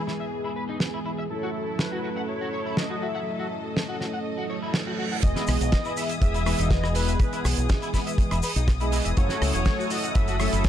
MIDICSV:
0, 0, Header, 1, 8, 480
1, 0, Start_track
1, 0, Key_signature, 4, "major"
1, 0, Tempo, 491803
1, 1270, Time_signature, 4, 2, 24, 8
1, 10432, End_track
2, 0, Start_track
2, 0, Title_t, "Analog synth lead"
2, 0, Program_c, 0, 81
2, 1271, Note_on_c, 0, 69, 89
2, 1749, Note_on_c, 0, 71, 91
2, 1763, Note_off_c, 0, 69, 0
2, 2223, Note_off_c, 0, 71, 0
2, 2229, Note_on_c, 0, 73, 99
2, 2711, Note_on_c, 0, 75, 95
2, 2725, Note_off_c, 0, 73, 0
2, 2954, Note_on_c, 0, 76, 103
2, 2969, Note_off_c, 0, 75, 0
2, 3432, Note_off_c, 0, 76, 0
2, 5109, Note_on_c, 0, 75, 110
2, 5449, Note_off_c, 0, 75, 0
2, 5471, Note_on_c, 0, 75, 107
2, 5803, Note_off_c, 0, 75, 0
2, 5828, Note_on_c, 0, 76, 112
2, 5936, Note_off_c, 0, 76, 0
2, 6070, Note_on_c, 0, 76, 120
2, 6547, Note_on_c, 0, 75, 102
2, 6561, Note_off_c, 0, 76, 0
2, 6783, Note_off_c, 0, 75, 0
2, 6789, Note_on_c, 0, 71, 88
2, 7236, Note_off_c, 0, 71, 0
2, 8950, Note_on_c, 0, 73, 100
2, 9289, Note_off_c, 0, 73, 0
2, 9315, Note_on_c, 0, 73, 101
2, 9671, Note_on_c, 0, 75, 104
2, 9686, Note_off_c, 0, 73, 0
2, 9909, Note_on_c, 0, 76, 120
2, 9923, Note_off_c, 0, 75, 0
2, 10391, Note_on_c, 0, 73, 98
2, 10405, Note_off_c, 0, 76, 0
2, 10432, Note_off_c, 0, 73, 0
2, 10432, End_track
3, 0, Start_track
3, 0, Title_t, "String section"
3, 0, Program_c, 1, 48
3, 0, Note_on_c, 1, 52, 76
3, 0, Note_on_c, 1, 68, 84
3, 1231, Note_off_c, 1, 52, 0
3, 1231, Note_off_c, 1, 68, 0
3, 1267, Note_on_c, 1, 54, 79
3, 1268, Note_on_c, 1, 64, 69
3, 1269, Note_on_c, 1, 69, 86
3, 3170, Note_off_c, 1, 64, 0
3, 3188, Note_on_c, 1, 75, 73
3, 5070, Note_off_c, 1, 54, 0
3, 5071, Note_off_c, 1, 69, 0
3, 5090, Note_off_c, 1, 75, 0
3, 5109, Note_on_c, 1, 87, 93
3, 5110, Note_on_c, 1, 68, 86
3, 7010, Note_off_c, 1, 87, 0
3, 7025, Note_on_c, 1, 87, 97
3, 8912, Note_off_c, 1, 68, 0
3, 8952, Note_on_c, 1, 69, 88
3, 8953, Note_on_c, 1, 78, 80
3, 10432, Note_off_c, 1, 69, 0
3, 10432, Note_off_c, 1, 78, 0
3, 10432, Note_off_c, 1, 87, 0
3, 10432, End_track
4, 0, Start_track
4, 0, Title_t, "Clean electric guitar"
4, 0, Program_c, 2, 27
4, 70, Note_on_c, 2, 64, 68
4, 107, Note_off_c, 2, 64, 0
4, 195, Note_on_c, 2, 76, 67
4, 230, Note_off_c, 2, 76, 0
4, 434, Note_on_c, 2, 64, 71
4, 492, Note_off_c, 2, 64, 0
4, 548, Note_on_c, 2, 71, 67
4, 611, Note_off_c, 2, 71, 0
4, 674, Note_on_c, 2, 63, 70
4, 760, Note_off_c, 2, 63, 0
4, 916, Note_on_c, 2, 64, 67
4, 950, Note_off_c, 2, 64, 0
4, 1031, Note_on_c, 2, 64, 68
4, 1068, Note_off_c, 2, 64, 0
4, 1156, Note_on_c, 2, 76, 67
4, 1190, Note_off_c, 2, 76, 0
4, 1396, Note_on_c, 2, 66, 68
4, 1453, Note_off_c, 2, 66, 0
4, 1875, Note_on_c, 2, 66, 69
4, 1932, Note_off_c, 2, 66, 0
4, 1990, Note_on_c, 2, 66, 68
4, 2027, Note_off_c, 2, 66, 0
4, 2115, Note_on_c, 2, 78, 66
4, 2149, Note_off_c, 2, 78, 0
4, 2355, Note_on_c, 2, 66, 69
4, 2412, Note_off_c, 2, 66, 0
4, 2469, Note_on_c, 2, 73, 67
4, 2532, Note_off_c, 2, 73, 0
4, 2593, Note_on_c, 2, 64, 69
4, 2680, Note_off_c, 2, 64, 0
4, 2833, Note_on_c, 2, 66, 70
4, 2868, Note_off_c, 2, 66, 0
4, 2948, Note_on_c, 2, 66, 66
4, 2986, Note_off_c, 2, 66, 0
4, 3072, Note_on_c, 2, 78, 69
4, 3108, Note_off_c, 2, 78, 0
4, 3312, Note_on_c, 2, 66, 70
4, 3371, Note_off_c, 2, 66, 0
4, 3793, Note_on_c, 2, 66, 70
4, 3851, Note_off_c, 2, 66, 0
4, 3908, Note_on_c, 2, 66, 69
4, 3946, Note_off_c, 2, 66, 0
4, 4034, Note_on_c, 2, 78, 70
4, 4069, Note_off_c, 2, 78, 0
4, 4273, Note_on_c, 2, 66, 72
4, 4331, Note_off_c, 2, 66, 0
4, 4389, Note_on_c, 2, 73, 69
4, 4452, Note_off_c, 2, 73, 0
4, 4513, Note_on_c, 2, 64, 68
4, 4600, Note_off_c, 2, 64, 0
4, 4753, Note_on_c, 2, 66, 69
4, 4789, Note_off_c, 2, 66, 0
4, 4869, Note_on_c, 2, 66, 69
4, 4907, Note_off_c, 2, 66, 0
4, 4995, Note_on_c, 2, 78, 67
4, 5029, Note_off_c, 2, 78, 0
4, 5235, Note_on_c, 2, 64, 76
4, 5292, Note_off_c, 2, 64, 0
4, 5714, Note_on_c, 2, 64, 77
4, 5772, Note_off_c, 2, 64, 0
4, 5829, Note_on_c, 2, 64, 73
4, 5867, Note_off_c, 2, 64, 0
4, 5954, Note_on_c, 2, 76, 75
4, 5989, Note_off_c, 2, 76, 0
4, 6193, Note_on_c, 2, 64, 78
4, 6251, Note_off_c, 2, 64, 0
4, 6309, Note_on_c, 2, 71, 76
4, 6372, Note_off_c, 2, 71, 0
4, 6432, Note_on_c, 2, 63, 75
4, 6520, Note_off_c, 2, 63, 0
4, 6673, Note_on_c, 2, 64, 77
4, 6708, Note_off_c, 2, 64, 0
4, 6789, Note_on_c, 2, 64, 74
4, 6827, Note_off_c, 2, 64, 0
4, 6914, Note_on_c, 2, 76, 75
4, 6949, Note_off_c, 2, 76, 0
4, 7154, Note_on_c, 2, 64, 78
4, 7212, Note_off_c, 2, 64, 0
4, 7635, Note_on_c, 2, 64, 77
4, 7692, Note_off_c, 2, 64, 0
4, 7751, Note_on_c, 2, 64, 80
4, 7788, Note_off_c, 2, 64, 0
4, 7874, Note_on_c, 2, 76, 76
4, 7909, Note_off_c, 2, 76, 0
4, 8114, Note_on_c, 2, 64, 82
4, 8172, Note_off_c, 2, 64, 0
4, 8230, Note_on_c, 2, 71, 73
4, 8292, Note_off_c, 2, 71, 0
4, 8354, Note_on_c, 2, 63, 78
4, 8441, Note_off_c, 2, 63, 0
4, 8594, Note_on_c, 2, 64, 77
4, 8629, Note_off_c, 2, 64, 0
4, 8709, Note_on_c, 2, 64, 77
4, 8747, Note_off_c, 2, 64, 0
4, 8835, Note_on_c, 2, 76, 78
4, 8869, Note_off_c, 2, 76, 0
4, 9075, Note_on_c, 2, 66, 80
4, 9132, Note_off_c, 2, 66, 0
4, 9553, Note_on_c, 2, 66, 77
4, 9611, Note_off_c, 2, 66, 0
4, 9671, Note_on_c, 2, 66, 77
4, 9708, Note_off_c, 2, 66, 0
4, 9794, Note_on_c, 2, 78, 74
4, 9829, Note_off_c, 2, 78, 0
4, 10035, Note_on_c, 2, 66, 79
4, 10093, Note_off_c, 2, 66, 0
4, 10153, Note_on_c, 2, 73, 76
4, 10214, Note_off_c, 2, 73, 0
4, 10277, Note_on_c, 2, 64, 78
4, 10362, Note_off_c, 2, 64, 0
4, 10432, End_track
5, 0, Start_track
5, 0, Title_t, "Analog polysynth"
5, 0, Program_c, 3, 90
5, 0, Note_on_c, 3, 52, 71
5, 0, Note_on_c, 3, 56, 66
5, 0, Note_on_c, 3, 59, 65
5, 0, Note_on_c, 3, 68, 79
5, 1238, Note_off_c, 3, 52, 0
5, 1240, Note_off_c, 3, 56, 0
5, 1242, Note_off_c, 3, 59, 0
5, 1247, Note_off_c, 3, 68, 0
5, 1261, Note_on_c, 3, 54, 74
5, 1266, Note_on_c, 3, 57, 68
5, 1271, Note_on_c, 3, 61, 67
5, 1275, Note_on_c, 3, 64, 66
5, 1281, Note_on_c, 3, 69, 80
5, 5078, Note_off_c, 3, 54, 0
5, 5080, Note_off_c, 3, 57, 0
5, 5083, Note_off_c, 3, 61, 0
5, 5085, Note_off_c, 3, 64, 0
5, 5088, Note_off_c, 3, 69, 0
5, 5097, Note_on_c, 3, 52, 78
5, 5102, Note_on_c, 3, 56, 71
5, 5108, Note_on_c, 3, 59, 69
5, 5117, Note_on_c, 3, 68, 87
5, 6276, Note_off_c, 3, 52, 0
5, 6278, Note_off_c, 3, 56, 0
5, 6281, Note_off_c, 3, 59, 0
5, 6286, Note_off_c, 3, 68, 0
5, 6297, Note_on_c, 3, 52, 96
5, 6302, Note_on_c, 3, 56, 88
5, 6308, Note_on_c, 3, 59, 86
5, 6317, Note_on_c, 3, 68, 100
5, 6996, Note_off_c, 3, 52, 0
5, 6998, Note_off_c, 3, 56, 0
5, 7001, Note_off_c, 3, 59, 0
5, 7006, Note_off_c, 3, 68, 0
5, 7019, Note_on_c, 3, 52, 75
5, 7024, Note_on_c, 3, 56, 67
5, 7029, Note_on_c, 3, 59, 69
5, 7038, Note_on_c, 3, 68, 82
5, 8197, Note_off_c, 3, 52, 0
5, 8199, Note_off_c, 3, 56, 0
5, 8202, Note_off_c, 3, 59, 0
5, 8206, Note_off_c, 3, 68, 0
5, 8591, Note_on_c, 3, 52, 80
5, 8594, Note_on_c, 3, 56, 76
5, 8596, Note_on_c, 3, 59, 73
5, 8599, Note_on_c, 3, 75, 74
5, 8601, Note_on_c, 3, 68, 90
5, 8921, Note_off_c, 3, 52, 0
5, 8922, Note_off_c, 3, 56, 0
5, 8923, Note_off_c, 3, 59, 0
5, 8924, Note_off_c, 3, 75, 0
5, 8925, Note_off_c, 3, 68, 0
5, 8942, Note_on_c, 3, 54, 77
5, 8947, Note_on_c, 3, 57, 73
5, 8953, Note_on_c, 3, 61, 72
5, 8957, Note_on_c, 3, 64, 70
5, 8962, Note_on_c, 3, 69, 86
5, 10118, Note_off_c, 3, 54, 0
5, 10121, Note_off_c, 3, 57, 0
5, 10124, Note_off_c, 3, 61, 0
5, 10126, Note_off_c, 3, 64, 0
5, 10128, Note_off_c, 3, 69, 0
5, 10141, Note_on_c, 3, 54, 94
5, 10146, Note_on_c, 3, 57, 89
5, 10151, Note_on_c, 3, 61, 86
5, 10155, Note_on_c, 3, 64, 85
5, 10160, Note_on_c, 3, 69, 107
5, 10432, Note_off_c, 3, 54, 0
5, 10432, Note_off_c, 3, 57, 0
5, 10432, Note_off_c, 3, 61, 0
5, 10432, Note_off_c, 3, 64, 0
5, 10432, Note_off_c, 3, 69, 0
5, 10432, End_track
6, 0, Start_track
6, 0, Title_t, "Fingered electric bass"
6, 0, Program_c, 4, 33
6, 5107, Note_on_c, 4, 28, 96
6, 5198, Note_off_c, 4, 28, 0
6, 5349, Note_on_c, 4, 35, 97
6, 5439, Note_off_c, 4, 35, 0
6, 5475, Note_on_c, 4, 35, 99
6, 5558, Note_off_c, 4, 35, 0
6, 6067, Note_on_c, 4, 28, 88
6, 6377, Note_off_c, 4, 28, 0
6, 6435, Note_on_c, 4, 28, 93
6, 6979, Note_off_c, 4, 28, 0
6, 7270, Note_on_c, 4, 35, 100
6, 7360, Note_off_c, 4, 35, 0
6, 7395, Note_on_c, 4, 35, 99
6, 7478, Note_off_c, 4, 35, 0
6, 8116, Note_on_c, 4, 28, 83
6, 8198, Note_off_c, 4, 28, 0
6, 8354, Note_on_c, 4, 35, 96
6, 8778, Note_off_c, 4, 35, 0
6, 8836, Note_on_c, 4, 28, 78
6, 8918, Note_off_c, 4, 28, 0
6, 8954, Note_on_c, 4, 30, 96
6, 9042, Note_off_c, 4, 30, 0
6, 9190, Note_on_c, 4, 37, 104
6, 9280, Note_off_c, 4, 37, 0
6, 9315, Note_on_c, 4, 28, 97
6, 9398, Note_off_c, 4, 28, 0
6, 9912, Note_on_c, 4, 30, 90
6, 10220, Note_off_c, 4, 30, 0
6, 10276, Note_on_c, 4, 30, 92
6, 10432, Note_off_c, 4, 30, 0
6, 10432, End_track
7, 0, Start_track
7, 0, Title_t, "Reverse cymbal"
7, 0, Program_c, 5, 119
7, 4148, Note_on_c, 5, 60, 66
7, 5109, Note_off_c, 5, 60, 0
7, 10432, End_track
8, 0, Start_track
8, 0, Title_t, "Drums"
8, 75, Note_on_c, 9, 38, 31
8, 173, Note_off_c, 9, 38, 0
8, 783, Note_on_c, 9, 38, 101
8, 880, Note_off_c, 9, 38, 0
8, 1748, Note_on_c, 9, 38, 102
8, 1845, Note_off_c, 9, 38, 0
8, 2704, Note_on_c, 9, 38, 105
8, 2801, Note_off_c, 9, 38, 0
8, 3676, Note_on_c, 9, 38, 96
8, 3773, Note_off_c, 9, 38, 0
8, 3912, Note_on_c, 9, 38, 36
8, 4010, Note_off_c, 9, 38, 0
8, 4624, Note_on_c, 9, 38, 112
8, 4721, Note_off_c, 9, 38, 0
8, 5106, Note_on_c, 9, 36, 126
8, 5110, Note_on_c, 9, 42, 83
8, 5113, Note_on_c, 9, 82, 64
8, 5203, Note_off_c, 9, 36, 0
8, 5208, Note_off_c, 9, 42, 0
8, 5210, Note_off_c, 9, 82, 0
8, 5230, Note_on_c, 9, 38, 40
8, 5235, Note_on_c, 9, 42, 55
8, 5240, Note_on_c, 9, 82, 40
8, 5328, Note_off_c, 9, 38, 0
8, 5333, Note_off_c, 9, 42, 0
8, 5337, Note_off_c, 9, 82, 0
8, 5340, Note_on_c, 9, 82, 78
8, 5352, Note_on_c, 9, 46, 100
8, 5354, Note_on_c, 9, 37, 82
8, 5438, Note_off_c, 9, 82, 0
8, 5449, Note_off_c, 9, 46, 0
8, 5452, Note_off_c, 9, 37, 0
8, 5475, Note_on_c, 9, 82, 51
8, 5477, Note_on_c, 9, 42, 70
8, 5573, Note_off_c, 9, 82, 0
8, 5574, Note_off_c, 9, 42, 0
8, 5584, Note_on_c, 9, 42, 84
8, 5586, Note_on_c, 9, 38, 121
8, 5588, Note_on_c, 9, 82, 63
8, 5591, Note_on_c, 9, 36, 113
8, 5682, Note_off_c, 9, 42, 0
8, 5683, Note_off_c, 9, 38, 0
8, 5686, Note_off_c, 9, 82, 0
8, 5688, Note_off_c, 9, 36, 0
8, 5708, Note_on_c, 9, 82, 45
8, 5806, Note_off_c, 9, 82, 0
8, 5827, Note_on_c, 9, 82, 88
8, 5837, Note_on_c, 9, 46, 93
8, 5925, Note_off_c, 9, 82, 0
8, 5935, Note_off_c, 9, 46, 0
8, 5948, Note_on_c, 9, 42, 65
8, 5959, Note_on_c, 9, 82, 48
8, 6046, Note_off_c, 9, 42, 0
8, 6057, Note_off_c, 9, 82, 0
8, 6067, Note_on_c, 9, 36, 124
8, 6068, Note_on_c, 9, 42, 86
8, 6075, Note_on_c, 9, 82, 61
8, 6165, Note_off_c, 9, 36, 0
8, 6165, Note_off_c, 9, 42, 0
8, 6172, Note_off_c, 9, 82, 0
8, 6190, Note_on_c, 9, 42, 56
8, 6203, Note_on_c, 9, 82, 45
8, 6288, Note_off_c, 9, 42, 0
8, 6301, Note_off_c, 9, 82, 0
8, 6309, Note_on_c, 9, 37, 76
8, 6310, Note_on_c, 9, 82, 79
8, 6311, Note_on_c, 9, 46, 108
8, 6407, Note_off_c, 9, 37, 0
8, 6407, Note_off_c, 9, 82, 0
8, 6409, Note_off_c, 9, 46, 0
8, 6428, Note_on_c, 9, 42, 65
8, 6439, Note_on_c, 9, 82, 49
8, 6525, Note_off_c, 9, 42, 0
8, 6537, Note_off_c, 9, 82, 0
8, 6545, Note_on_c, 9, 36, 122
8, 6545, Note_on_c, 9, 38, 118
8, 6547, Note_on_c, 9, 42, 84
8, 6547, Note_on_c, 9, 82, 54
8, 6642, Note_off_c, 9, 36, 0
8, 6643, Note_off_c, 9, 38, 0
8, 6644, Note_off_c, 9, 42, 0
8, 6645, Note_off_c, 9, 82, 0
8, 6672, Note_on_c, 9, 37, 79
8, 6684, Note_on_c, 9, 82, 39
8, 6770, Note_off_c, 9, 37, 0
8, 6781, Note_off_c, 9, 82, 0
8, 6782, Note_on_c, 9, 46, 107
8, 6788, Note_on_c, 9, 82, 77
8, 6879, Note_off_c, 9, 46, 0
8, 6886, Note_off_c, 9, 82, 0
8, 6913, Note_on_c, 9, 82, 51
8, 6916, Note_on_c, 9, 42, 61
8, 7011, Note_off_c, 9, 82, 0
8, 7013, Note_off_c, 9, 42, 0
8, 7022, Note_on_c, 9, 42, 89
8, 7025, Note_on_c, 9, 36, 127
8, 7029, Note_on_c, 9, 82, 56
8, 7120, Note_off_c, 9, 42, 0
8, 7122, Note_off_c, 9, 36, 0
8, 7127, Note_off_c, 9, 82, 0
8, 7151, Note_on_c, 9, 42, 54
8, 7155, Note_on_c, 9, 82, 45
8, 7248, Note_off_c, 9, 42, 0
8, 7252, Note_off_c, 9, 82, 0
8, 7272, Note_on_c, 9, 37, 77
8, 7272, Note_on_c, 9, 82, 90
8, 7277, Note_on_c, 9, 46, 118
8, 7369, Note_off_c, 9, 37, 0
8, 7370, Note_off_c, 9, 82, 0
8, 7374, Note_off_c, 9, 46, 0
8, 7383, Note_on_c, 9, 42, 72
8, 7398, Note_on_c, 9, 82, 51
8, 7481, Note_off_c, 9, 42, 0
8, 7496, Note_off_c, 9, 82, 0
8, 7509, Note_on_c, 9, 82, 61
8, 7510, Note_on_c, 9, 42, 82
8, 7512, Note_on_c, 9, 38, 127
8, 7514, Note_on_c, 9, 36, 127
8, 7606, Note_off_c, 9, 82, 0
8, 7607, Note_off_c, 9, 42, 0
8, 7609, Note_off_c, 9, 38, 0
8, 7612, Note_off_c, 9, 36, 0
8, 7635, Note_on_c, 9, 42, 49
8, 7642, Note_on_c, 9, 82, 41
8, 7732, Note_off_c, 9, 42, 0
8, 7739, Note_off_c, 9, 82, 0
8, 7748, Note_on_c, 9, 36, 62
8, 7748, Note_on_c, 9, 46, 97
8, 7751, Note_on_c, 9, 82, 90
8, 7752, Note_on_c, 9, 38, 39
8, 7845, Note_off_c, 9, 36, 0
8, 7845, Note_off_c, 9, 46, 0
8, 7848, Note_off_c, 9, 82, 0
8, 7850, Note_off_c, 9, 38, 0
8, 7875, Note_on_c, 9, 42, 61
8, 7887, Note_on_c, 9, 82, 52
8, 7973, Note_off_c, 9, 42, 0
8, 7984, Note_off_c, 9, 82, 0
8, 7985, Note_on_c, 9, 36, 120
8, 7987, Note_on_c, 9, 42, 98
8, 7995, Note_on_c, 9, 82, 55
8, 8083, Note_off_c, 9, 36, 0
8, 8084, Note_off_c, 9, 42, 0
8, 8092, Note_off_c, 9, 82, 0
8, 8111, Note_on_c, 9, 42, 50
8, 8113, Note_on_c, 9, 37, 60
8, 8124, Note_on_c, 9, 82, 43
8, 8209, Note_off_c, 9, 42, 0
8, 8211, Note_off_c, 9, 37, 0
8, 8222, Note_off_c, 9, 82, 0
8, 8223, Note_on_c, 9, 82, 90
8, 8232, Note_on_c, 9, 46, 115
8, 8321, Note_off_c, 9, 82, 0
8, 8330, Note_off_c, 9, 46, 0
8, 8355, Note_on_c, 9, 42, 61
8, 8362, Note_on_c, 9, 82, 51
8, 8452, Note_off_c, 9, 42, 0
8, 8459, Note_off_c, 9, 82, 0
8, 8470, Note_on_c, 9, 36, 126
8, 8471, Note_on_c, 9, 38, 121
8, 8473, Note_on_c, 9, 42, 81
8, 8474, Note_on_c, 9, 37, 78
8, 8474, Note_on_c, 9, 82, 62
8, 8567, Note_off_c, 9, 36, 0
8, 8568, Note_off_c, 9, 38, 0
8, 8571, Note_off_c, 9, 42, 0
8, 8571, Note_off_c, 9, 82, 0
8, 8572, Note_off_c, 9, 37, 0
8, 8590, Note_on_c, 9, 82, 45
8, 8598, Note_on_c, 9, 42, 58
8, 8688, Note_off_c, 9, 82, 0
8, 8696, Note_off_c, 9, 42, 0
8, 8707, Note_on_c, 9, 46, 108
8, 8713, Note_on_c, 9, 82, 83
8, 8804, Note_off_c, 9, 46, 0
8, 8810, Note_off_c, 9, 82, 0
8, 8833, Note_on_c, 9, 42, 68
8, 8835, Note_on_c, 9, 82, 45
8, 8930, Note_off_c, 9, 42, 0
8, 8932, Note_off_c, 9, 82, 0
8, 8949, Note_on_c, 9, 42, 86
8, 8954, Note_on_c, 9, 36, 127
8, 8954, Note_on_c, 9, 82, 60
8, 9046, Note_off_c, 9, 42, 0
8, 9052, Note_off_c, 9, 36, 0
8, 9052, Note_off_c, 9, 82, 0
8, 9068, Note_on_c, 9, 38, 38
8, 9076, Note_on_c, 9, 82, 45
8, 9079, Note_on_c, 9, 42, 50
8, 9166, Note_off_c, 9, 38, 0
8, 9174, Note_off_c, 9, 82, 0
8, 9177, Note_off_c, 9, 42, 0
8, 9192, Note_on_c, 9, 37, 82
8, 9192, Note_on_c, 9, 46, 112
8, 9201, Note_on_c, 9, 82, 78
8, 9290, Note_off_c, 9, 37, 0
8, 9290, Note_off_c, 9, 46, 0
8, 9299, Note_off_c, 9, 82, 0
8, 9307, Note_on_c, 9, 42, 66
8, 9312, Note_on_c, 9, 82, 52
8, 9405, Note_off_c, 9, 42, 0
8, 9410, Note_off_c, 9, 82, 0
8, 9424, Note_on_c, 9, 82, 54
8, 9426, Note_on_c, 9, 38, 125
8, 9426, Note_on_c, 9, 42, 78
8, 9428, Note_on_c, 9, 36, 127
8, 9521, Note_off_c, 9, 82, 0
8, 9524, Note_off_c, 9, 38, 0
8, 9524, Note_off_c, 9, 42, 0
8, 9525, Note_off_c, 9, 36, 0
8, 9568, Note_on_c, 9, 82, 39
8, 9665, Note_off_c, 9, 82, 0
8, 9667, Note_on_c, 9, 82, 84
8, 9669, Note_on_c, 9, 46, 103
8, 9765, Note_off_c, 9, 82, 0
8, 9767, Note_off_c, 9, 46, 0
8, 9793, Note_on_c, 9, 42, 67
8, 9803, Note_on_c, 9, 82, 51
8, 9891, Note_off_c, 9, 42, 0
8, 9900, Note_off_c, 9, 82, 0
8, 9907, Note_on_c, 9, 42, 91
8, 9911, Note_on_c, 9, 36, 127
8, 9911, Note_on_c, 9, 82, 54
8, 10004, Note_off_c, 9, 42, 0
8, 10008, Note_off_c, 9, 82, 0
8, 10009, Note_off_c, 9, 36, 0
8, 10029, Note_on_c, 9, 82, 39
8, 10031, Note_on_c, 9, 42, 52
8, 10127, Note_off_c, 9, 82, 0
8, 10129, Note_off_c, 9, 42, 0
8, 10147, Note_on_c, 9, 37, 78
8, 10150, Note_on_c, 9, 82, 76
8, 10155, Note_on_c, 9, 46, 99
8, 10245, Note_off_c, 9, 37, 0
8, 10247, Note_off_c, 9, 82, 0
8, 10253, Note_off_c, 9, 46, 0
8, 10275, Note_on_c, 9, 42, 65
8, 10278, Note_on_c, 9, 82, 51
8, 10372, Note_off_c, 9, 42, 0
8, 10375, Note_off_c, 9, 82, 0
8, 10387, Note_on_c, 9, 42, 92
8, 10390, Note_on_c, 9, 82, 58
8, 10391, Note_on_c, 9, 38, 113
8, 10392, Note_on_c, 9, 36, 127
8, 10432, Note_off_c, 9, 36, 0
8, 10432, Note_off_c, 9, 38, 0
8, 10432, Note_off_c, 9, 42, 0
8, 10432, Note_off_c, 9, 82, 0
8, 10432, End_track
0, 0, End_of_file